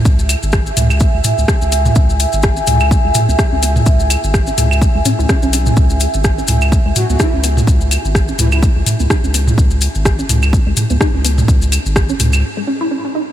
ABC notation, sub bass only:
X:1
M:4/4
L:1/16
Q:"Swing 16ths" 1/4=126
K:C#m
V:1 name="Sub bass" clef=bass
C,,2 z G,,,2 z C,,2 z C,, z C,, z C,,2 z | C,,2 z G,,,2 z C,,2 z C,, z C,, z C,,2 z | C,,2 z G,,,2 z C,,2 z C,, z C,, z B,,,2 z | C,,2 z G,,,2 z C,,2 z C,, z C,, z C,,2 z |
C,,2 z G,,,2 z C,,2 z C,, z C,, z C,,2 z | C,,2 z G,,,2 z C,,2 z C,, z C,, z C,,2 z | C,,2 z G,,,2 z C,,2 z8 |]